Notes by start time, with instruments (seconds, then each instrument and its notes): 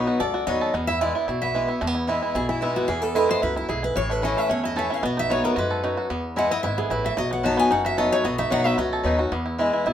Already playing: steel-string acoustic guitar B2 F#3 B3 D#4 F#4, five-string banjo B3 D#4
0.07 five-string banjo F#4
0.20 upright bass C#2, steel-string acoustic guitar F#2 D5, five-string banjo A4
0.34 five-string banjo F#4
0.47 upright bass D#2, steel-string acoustic guitar F#3 B3 D#4 F#4 D#5, five-string banjo B3
0.61 five-string banjo A4
0.74 upright bass E2, steel-string acoustic guitar E2, five-string banjo B3
0.87 five-string banjo E4, steel-string acoustic guitar E5
1.01 steel-string acoustic guitar E3 G#3 B3 E4 D5, five-string banjo E4
1.15 steel-string acoustic guitar B3 E4, five-string banjo E4
1.27 upright bass B1, steel-string acoustic guitar B2, five-string banjo E4
1.42 five-string banjo B3, steel-string acoustic guitar E5
1.54 steel-string acoustic guitar E3 G#3 B3 E4, five-string banjo E4
1.68 steel-string acoustic guitar B3 E4, five-string banjo E4
1.81 upright bass E2, steel-string acoustic guitar E2, five-string banjo A3
1.87 five-string banjo B3
1.95 five-string banjo E4
2.07 steel-string acoustic guitar E3 G#3 B3 E4, five-string banjo E4
2.22 five-string banjo E4
2.35 upright bass B1, steel-string acoustic guitar B2 G#4, five-string banjo E4
2.49 five-string banjo E4, steel-string acoustic guitar E4
2.61 steel-string acoustic guitar E3 G#3 B3 D#4 E4, five-string banjo E4
2.76 five-string banjo B3, steel-string acoustic guitar F#4
2.88 steel-string acoustic guitar E2 G#4, upright bass E2, five-string banjo E3
3.02 five-string banjo B3, steel-string acoustic guitar A4
3.15 steel-string acoustic guitar E3 G#3 B3 E4 B4, five-string banjo E4
3.29 five-string banjo B3, steel-string acoustic guitar C5
3.42 upright bass C#2, steel-string acoustic guitar F#2 B4, five-string banjo E4
3.56 five-string banjo E4, steel-string acoustic guitar E4
3.69 upright bass B1, steel-string acoustic guitar G#2 G#4, five-string banjo E4
3.83 five-string banjo E4, steel-string acoustic guitar B4
3.96 upright bass A1, steel-string acoustic guitar A2 C#5, five-string banjo E3
4.10 five-string banjo A3, steel-string acoustic guitar B4
4.22 steel-string acoustic guitar E3 A3 C#4 E4 D#5, five-string banjo E4
4.37 five-string banjo A3, steel-string acoustic guitar E5
4.49 upright bass E2, steel-string acoustic guitar E2 C#5, five-string banjo C#4
4.64 five-string banjo E4, steel-string acoustic guitar D#5
4.76 steel-string acoustic guitar E3 A3 C#4 E4 E5, five-string banjo A4
4.90 five-string banjo C#4, steel-string acoustic guitar C#4 E4 F5
5.03 upright bass B1, steel-string acoustic guitar B2 D#5, five-string banjo B3
5.17 five-string banjo D#4, steel-string acoustic guitar E5
5.29 steel-string acoustic guitar F#3 B3 D#4 F#4 C#5, five-string banjo F#4
5.44 five-string banjo B3, steel-string acoustic guitar A#4
5.56 upright bass F#2, steel-string acoustic guitar G#2 B4, five-string banjo F#4
5.70 five-string banjo A4
5.84 steel-string acoustic guitar F#2, five-string banjo D#4
5.97 five-string banjo F#4
6.10 steel-string acoustic guitar E2, upright bass E2, five-string banjo B3
6.36 steel-string acoustic guitar E3 G#3 B3 E4 F#5, five-string banjo E4
6.51 five-string banjo B3, steel-string acoustic guitar B3 E4 D#5
6.63 upright bass G#1, steel-string acoustic guitar G#2 E5, five-string banjo E4
6.78 five-string banjo B3, steel-string acoustic guitar G#4
6.90 upright bass A1, steel-string acoustic guitar A2 B4, five-string banjo E4
7.04 five-string banjo E3, steel-string acoustic guitar E5
7.17 upright bass B1, steel-string acoustic guitar B2 D#5, five-string banjo F#3
7.31 five-string banjo B3, steel-string acoustic guitar F#5
7.43 steel-string acoustic guitar F#3 B3 D#4 F#4 A5, five-string banjo F#4
7.57 five-string banjo B3, steel-string acoustic guitar G#5
7.70 upright bass F#1, steel-string acoustic guitar F#2 F#5, five-string banjo D#4
7.85 five-string banjo F#4, steel-string acoustic guitar E5
7.97 steel-string acoustic guitar F#3 B3 D#4 F#4 D#5, five-string banjo A4
8.12 five-string banjo D#4, steel-string acoustic guitar C#5
8.24 upright bass B1, steel-string acoustic guitar B2 D#5, five-string banjo B3
8.38 five-string banjo D#4, steel-string acoustic guitar E5
8.50 upright bass B1, steel-string acoustic guitar F#3 B3 D#4 F#4 F#5, five-string banjo F#4
8.65 five-string banjo B3, steel-string acoustic guitar E5
8.78 upright bass C#2, steel-string acoustic guitar F#2 D#5, five-string banjo F#4
8.93 five-string banjo A4
9.04 upright bass D#2, steel-string acoustic guitar F#3 B3 D#4 F#4, five-string banjo D#4
9.18 steel-string acoustic guitar D#4 F#4, five-string banjo F#4
9.32 upright bass E2, steel-string acoustic guitar E2, five-string banjo B3
9.46 five-string banjo E4
9.58 steel-string acoustic guitar E3 G#3 B3 E4, five-string banjo E4
9.73 five-string banjo E4
9.86 upright bass B1, steel-string acoustic guitar B2, five-string banjo E4